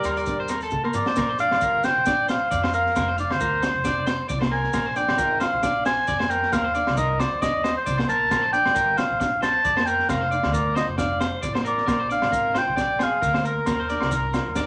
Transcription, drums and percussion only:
0.04 cross-stick medium
0.04 closed hi-hat medium
0.04 low agogo medium
0.04 maracas medium
0.16 closed hi-hat medium
0.16 maracas soft
0.26 kick medium
0.26 closed hi-hat medium
0.26 maracas medium
0.48 cross-stick medium
0.48 closed hi-hat medium
0.48 low agogo medium
0.48 maracas loud
0.61 closed hi-hat medium
0.61 maracas soft
0.70 kick medium
0.70 high tom medium
0.70 maracas medium
0.85 low agogo medium
0.93 mid tom medium
0.93 maracas loud
1.06 snare medium
1.06 maracas soft
1.16 kick loud
1.16 snare medium
1.16 low agogo medium
1.16 maracas loud
1.39 snare soft
1.39 maracas medium
1.51 snare medium
1.51 low agogo medium
1.61 kick medium
1.61 maracas loud
1.83 snare medium
1.83 low agogo medium
1.83 maracas medium
2.06 kick medium
2.06 snare medium
2.06 maracas loud
2.29 snare medium
2.29 low agogo medium
2.29 maracas medium
2.51 kick loud
2.51 maracas loud
2.64 snare medium
2.64 low agogo medium
2.73 maracas medium
2.86 snare soft
2.96 kick medium
2.96 snare medium
2.96 low agogo medium
2.96 maracas loud
3.18 snare soft
3.18 maracas medium
3.31 snare medium
3.31 low agogo medium
3.40 kick loud
3.40 maracas loud
3.62 snare medium
3.62 low agogo medium
3.62 maracas medium
3.85 kick loud
3.85 snare medium
3.85 maracas loud
4.07 snare medium
4.07 low agogo medium
4.07 maracas medium
4.29 kick medium
4.29 snare soft
4.29 maracas loud
4.41 snare medium
4.41 low agogo medium
4.64 snare soft
4.73 kick medium
4.73 snare medium
4.73 low agogo medium
4.73 maracas medium
4.96 snare soft
4.96 maracas medium
5.08 snare medium
5.08 low agogo medium
5.18 kick loud
5.18 maracas loud
5.40 snare medium
5.40 low agogo medium
5.40 maracas medium
5.63 kick medium
5.63 snare medium
5.63 maracas loud
5.85 snare medium
5.85 low agogo medium
5.85 maracas medium
6.07 kick loud
6.07 snare soft
6.07 maracas medium
6.20 snare medium
6.20 low agogo medium
6.30 maracas medium
6.42 snare soft
6.53 kick medium
6.53 snare medium
6.53 low agogo medium
6.53 maracas loud
6.75 snare soft
6.75 maracas medium
6.87 snare medium
6.87 low agogo medium
6.97 kick loud
6.97 maracas loud
7.20 snare medium
7.20 low agogo medium
7.20 maracas medium
7.42 kick medium
7.42 snare medium
7.42 maracas loud
7.64 snare medium
7.64 low agogo medium
7.64 maracas medium
7.87 kick medium
7.87 snare soft
7.87 maracas loud
7.98 snare medium
7.98 low agogo medium
8.09 maracas medium
8.31 kick medium
8.31 snare medium
8.31 low agogo medium
8.31 maracas loud
8.54 maracas medium
8.66 snare medium
8.66 low agogo medium
8.76 kick medium
8.76 maracas loud
8.98 snare medium
8.98 low agogo medium
8.98 maracas medium
9.21 kick medium
9.21 snare medium
9.21 maracas loud
9.43 snare medium
9.43 low agogo medium
9.43 maracas medium
9.65 kick loud
9.65 maracas loud
9.77 snare medium
9.77 low agogo medium
9.87 maracas medium
9.99 snare soft
10.09 kick medium
10.09 snare medium
10.09 low agogo medium
10.09 maracas loud
10.32 maracas medium
10.43 snare medium
10.43 low agogo medium
10.54 kick medium
10.54 maracas loud
10.76 snare medium
10.76 low agogo medium
10.76 maracas medium
10.98 kick medium
10.98 snare medium
10.98 maracas medium
11.20 snare medium
11.20 low agogo medium
11.20 maracas medium
11.43 kick loud
11.43 snare soft
11.43 maracas medium
11.55 snare medium
11.55 low agogo medium
11.66 maracas medium
11.78 snare soft
11.88 kick medium
11.88 snare medium
11.88 low agogo medium
11.88 maracas medium
12.10 snare soft
12.10 maracas medium
12.22 snare medium
12.22 low agogo medium
12.33 kick medium
12.33 maracas medium
12.55 snare medium
12.55 low agogo medium
12.55 maracas medium
12.77 kick medium
12.77 snare medium
12.77 maracas medium
12.99 snare medium
12.99 low agogo medium
12.99 maracas medium
13.22 kick medium
13.22 snare soft
13.22 maracas loud
13.34 snare medium
13.34 low agogo medium
13.45 maracas medium
13.66 kick medium
13.66 snare medium
13.66 low agogo medium
13.66 maracas loud
13.89 snare soft
13.89 maracas medium
14.00 snare medium
14.00 low agogo medium
14.11 kick medium
14.11 maracas loud
14.34 snare medium
14.34 low agogo medium
14.34 maracas medium
14.55 kick medium
14.55 snare medium
14.55 maracas loud

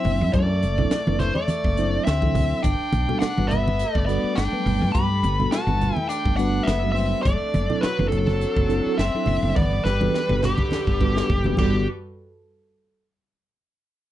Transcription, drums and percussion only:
0.05 open hi-hat medium
0.05 low conga medium
0.34 kick loud
0.34 closed hi-hat medium
0.63 closed hi-hat medium
0.78 kick medium
0.78 low conga medium
0.91 snare loud
0.91 closed hi-hat medium
1.07 high conga medium
1.20 snare soft
1.20 closed hi-hat medium
1.20 low conga medium
1.35 high conga medium
1.48 closed hi-hat medium
1.48 high conga medium
1.64 kick medium
1.77 closed hi-hat medium
2.07 snare loud
2.07 closed hi-hat medium
2.22 kick medium
2.22 high conga medium
2.35 kick medium
2.35 open hi-hat medium
2.35 low conga medium
2.64 kick loud
2.64 closed hi-hat medium
2.93 closed hi-hat medium
2.93 high conga medium
3.09 low conga medium
3.22 snare loud
3.22 closed hi-hat medium
3.38 high conga medium
3.51 closed hi-hat medium
3.51 low conga medium
3.68 high conga medium
3.79 closed hi-hat medium
3.95 kick medium
4.09 closed hi-hat medium
4.38 snare loud
4.38 closed hi-hat medium
4.67 open hi-hat medium
4.67 low conga medium
4.95 kick medium
4.95 closed hi-hat medium
5.24 closed hi-hat medium
5.24 high conga medium
5.40 low conga medium
5.52 snare loud
5.52 closed hi-hat medium
5.68 high conga medium
5.81 closed hi-hat medium
5.81 low conga medium
5.97 high conga medium
6.10 closed hi-hat medium
6.25 kick medium
6.39 closed hi-hat medium
6.67 snare loud
6.67 closed hi-hat medium
6.96 open hi-hat medium
7.25 kick loud
7.25 closed hi-hat medium
7.54 closed hi-hat medium
7.54 high conga medium
7.70 low conga medium
7.83 snare loud
7.83 closed hi-hat medium
7.99 high conga medium
8.12 closed hi-hat medium
8.12 low conga medium
8.27 snare soft
8.27 high conga medium
8.41 closed hi-hat medium
8.56 kick medium
8.70 closed hi-hat medium
8.99 snare loud
8.99 closed hi-hat medium
9.26 open hi-hat medium
9.26 low conga medium
9.56 kick loud
9.56 high tom medium
9.72 high tom medium
9.85 snare medium
9.85 high conga medium
10.01 high tom medium
10.01 low conga medium
10.14 snare medium
10.29 mid tom medium
10.29 high conga medium
10.43 snare medium
10.43 low conga medium
10.58 kick medium
10.58 high conga medium
10.71 snare medium
10.71 high conga medium
10.87 kick medium
11.01 kick medium
11.17 snare medium
11.30 kick medium
11.44 floor tom medium
11.44 high conga medium
11.57 kick loud
11.57 crash medium
11.57 high conga medium

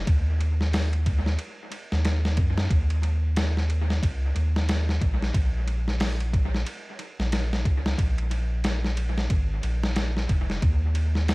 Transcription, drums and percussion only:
0.07 kick loud
0.07 ride medium
0.41 ride medium
0.61 snare soft
0.73 snare loud
0.73 open hi-hat medium
0.93 ride soft
1.06 kick loud
1.06 ride medium
1.26 snare soft
1.39 ride medium
1.72 ride medium
1.92 snare soft
2.05 snare loud
2.05 ride medium
2.25 snare medium
2.37 kick medium
2.37 ride medium
2.58 snare medium
2.70 kick loud
2.70 ride medium
2.90 ride soft
3.03 ride medium
3.36 snare loud
3.36 ride medium
3.57 snare soft
3.70 ride medium
3.90 snare medium
4.03 kick loud
4.03 ride medium
4.36 ride medium
4.56 snare medium
4.69 snare loud
4.69 ride medium
4.89 snare soft
5.01 kick medium
5.01 ride medium
5.22 snare soft
5.34 kick loud
5.34 ride medium
5.68 ride medium
5.88 snare soft
6.00 snare loud
6.00 open hi-hat medium
6.20 ride soft
6.33 kick loud
6.33 ride medium
6.54 snare soft
6.66 ride medium
6.99 ride medium
7.20 snare soft
7.32 snare loud
7.32 ride medium
7.53 snare medium
7.65 kick loud
7.65 ride medium
7.86 snare medium
7.98 kick loud
7.98 ride medium
8.18 ride soft
8.31 ride medium
8.64 snare loud
8.64 ride medium
8.84 snare soft
8.97 ride medium
9.18 snare medium
9.30 kick loud
9.30 ride medium
9.63 ride medium
9.83 snare medium
9.96 snare loud
9.96 ride medium
10.17 snare soft
10.29 kick medium
10.29 ride medium
10.50 snare soft
10.62 kick loud
10.62 ride medium
10.95 ride medium
11.15 snare soft
11.28 snare loud
11.28 open hi-hat medium

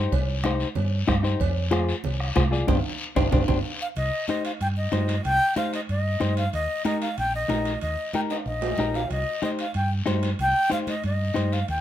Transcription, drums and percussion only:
0.12 bombo low medium
0.12 cowbell loud
0.12 long guiro medium
0.44 bombo rim medium
0.44 high conga medium
0.44 short guiro medium
0.60 short guiro medium
0.75 cowbell medium
0.75 low conga medium
0.75 long guiro medium
1.08 bombo low medium
1.08 bombo rim medium
1.08 high conga medium
1.08 short guiro medium
1.24 short guiro medium
1.40 bombo low medium
1.40 cowbell loud
1.40 long guiro medium
1.71 bombo rim medium
1.71 high conga medium
1.71 short guiro medium
1.89 short guiro medium
2.04 cowbell medium
2.04 low conga medium
2.04 long guiro medium
2.20 bombo rim medium
2.36 bombo low medium
2.36 bombo rim medium
2.36 high conga medium
2.36 short guiro medium
2.53 short guiro medium
2.68 bombo low loud
2.68 low conga loud
2.68 high timbale medium
2.68 long guiro loud
3.16 bombo low loud
3.16 low conga medium
3.16 high timbale loud
3.16 long guiro loud
3.32 bombo low loud
3.32 low conga loud
3.32 high timbale medium
3.32 long guiro medium
3.48 bombo low medium
3.48 low conga medium
3.48 high timbale medium
3.48 long guiro loud
3.96 high timbale medium
3.96 long guiro medium
4.28 high conga medium
4.28 high timbale medium
4.28 short guiro medium
4.45 high timbale medium
4.45 short guiro medium
4.61 high timbale medium
4.61 long guiro medium
4.92 high conga medium
4.92 high timbale medium
4.92 low timbale medium
4.92 short guiro medium
5.08 high timbale medium
5.08 short guiro medium
5.24 high timbale medium
5.24 long guiro medium
5.56 high conga medium
5.56 high timbale medium
5.56 short guiro medium
5.73 high timbale medium
5.73 short guiro medium
5.89 high timbale medium
5.89 long guiro medium
6.21 high conga medium
6.21 high timbale medium
6.21 short guiro medium
6.37 high timbale medium
6.37 short guiro medium
6.53 high timbale medium
6.53 long guiro medium
6.85 high conga medium
6.85 high timbale medium
6.85 short guiro medium
7.02 high timbale medium
7.02 short guiro medium
7.18 high timbale medium
7.18 long guiro medium
7.50 high conga medium
7.50 high timbale medium
7.50 low timbale medium
7.50 short guiro medium
7.65 high timbale medium
7.65 short guiro medium
7.81 high timbale medium
7.81 long guiro medium
8.14 high conga medium
8.14 high timbale medium
8.14 short guiro medium
8.30 high timbale medium
8.30 short guiro medium
8.46 long guiro medium
8.62 low timbale medium
8.77 high conga medium
8.77 low timbale medium
8.77 short guiro medium
8.94 low timbale medium
8.94 short guiro medium
9.10 high timbale medium
9.10 long guiro medium
9.43 high conga medium
9.43 high timbale medium
9.43 short guiro medium
9.59 high timbale medium
9.59 short guiro medium
9.74 high timbale medium
9.74 long guiro medium
10.07 high conga medium
10.07 high timbale medium
10.07 low timbale medium
10.07 short guiro medium
10.23 high timbale medium
10.23 short guiro medium
10.39 high timbale medium
10.39 long guiro medium
10.72 high conga medium
10.72 high timbale medium
10.72 short guiro medium
10.87 high conga medium
10.87 high timbale medium
10.87 short guiro medium
11.04 high timbale medium
11.04 long guiro medium
11.35 high conga medium
11.35 high timbale medium
11.35 short guiro medium
11.52 high timbale medium
11.52 short guiro medium
11.68 high timbale medium
11.68 long guiro medium

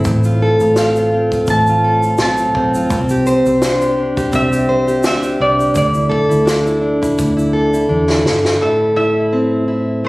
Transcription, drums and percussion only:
0.04 kick loud
0.04 shaker medium
0.24 shaker medium
0.60 shaker medium
0.76 snare loud
0.76 shaker medium
0.96 shaker soft
1.32 kick medium
1.32 shaker medium
1.47 kick loud
1.47 shaker medium
1.67 shaker medium
2.03 shaker soft
2.18 snare loud
2.18 shaker medium
2.37 shaker soft
2.55 kick medium
2.74 shaker medium
2.90 kick loud
2.90 shaker medium
3.09 shaker medium
3.26 shaker soft
3.46 shaker medium
3.62 snare loud
3.62 shaker medium
3.81 shaker medium
4.17 kick loud
4.17 shaker medium
4.33 kick loud
4.33 shaker medium
4.53 shaker medium
4.88 shaker soft
5.03 snare loud
5.03 shaker medium
5.23 shaker soft
5.60 shaker medium
5.75 kick loud
5.75 shaker medium
5.94 shaker medium
6.12 kick medium
6.31 shaker medium
6.47 snare loud
6.47 shaker medium
6.67 shaker soft
7.03 kick loud
7.03 shaker medium
7.18 kick loud
7.18 shaker medium
7.39 shaker medium
7.74 shaker soft
8.10 snare medium
8.26 snare medium
8.45 snare medium

